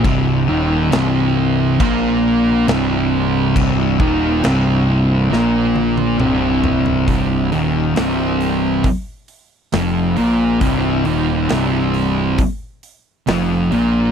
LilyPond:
<<
  \new Staff \with { instrumentName = "Distorted electric guitar" } { \clef bass \time 4/4 \key c \minor \tempo 4 = 68 <c, c>8 <ees, ees>8 <c, c>4 <bes, bes>4 <c, c>4 | <c, c>8 <ees, ees>8 <c, c>4 <bes, bes>4 <c, c>4 | <c, c>8 <ees, ees>8 <c, c>4 r4 <f, f>8 <bes, bes>8 | <c, c>8 <ees, ees>8 <c, c>4 r4 <f, f>8 <bes, bes>8 | }
  \new Staff \with { instrumentName = "Distorted electric guitar" } { \clef bass \time 4/4 \key c \minor <c, c>8 <ees, ees>8 <c, c>4 <bes, bes>4 <c, c>4 | <c, c>8 <ees, ees>8 <c, c>4 <bes, bes>4 <c, c>4 | <c, c>8 <ees, ees>8 <c, c>4 r4 <f, f>8 <bes, bes>8 | <c, c>8 <ees, ees>8 <c, c>4 r4 <f, f>8 <bes, bes>8 | }
  \new Staff \with { instrumentName = "Picked electric bass" } { \clef bass \time 4/4 \key c \minor c,,8 ees,,8 c,,4 bes,,4 c,,4 | c,,8 ees,,8 c,,4 bes,,4 c,,4 | c,,8 ees,,8 c,,4 r4 f,,8 bes,,8 | c,,8 ees,,8 c,,4 r4 f,,8 bes,,8 | }
  \new DrumStaff \with { instrumentName = "Drums" } \drummode { \time 4/4 <cymc bd>4 <cymc sn>4 <cymc bd>4 <cymc sn>4 | <cymc bd>8 bd8 <cymc sn>4 sn8 tommh16 tommh16 toml8 tomfh16 tomfh16 | <hho bd>8 hho8 <hho sn>8 hho8 <hho bd>8 hho8 <hho sn>8 hho8 | <hho bd>8 hho8 <hho sn>8 hho8 <hho bd>8 hho8 <hho sn>8 hho8 | }
>>